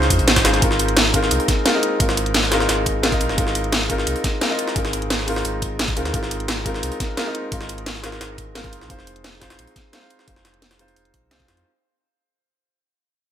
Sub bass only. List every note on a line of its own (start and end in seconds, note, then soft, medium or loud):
0.11 0.21 F2 medium
0.19 0.44 G#1 loud
0.45 0.61 G#1 medium
0.62 1.30 G#1 loud
1.31 1.39 C2 loud
2.00 2.68 G#1 loud
2.69 3.22 G#1 medium
3.21 3.31 C2 medium
3.30 3.37 D#1 medium
3.38 4.06 G#1 loud
4.07 4.15 C2 loud
4.76 5.44 G#1 loud
5.45 5.98 G#1 medium
5.97 6.12 D#2 medium
6.14 6.82 G#1 loud
6.83 6.91 C2 loud
7.52 8.20 G#1 medium
8.21 8.74 G#1 medium
8.73 8.83 F1 medium
8.81 8.89 C2 medium
8.90 9.57 F1 loud
9.59 9.67 A#1 loud
10.28 10.95 F1 loud
10.97 11.13 F1 medium
11.14 11.24 A#1 medium
11.23 11.47 C2 loud
11.48 11.64 F2 medium